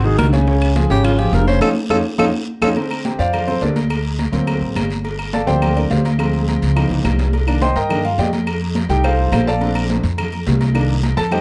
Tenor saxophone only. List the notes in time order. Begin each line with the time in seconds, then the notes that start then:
0.05 G#4
0.18 A#4
0.91 G4
1.05 F4
1.19 G4
1.34 A#4
1.47 C5
1.62 A4
1.90 A4
2.19 A4
2.62 A4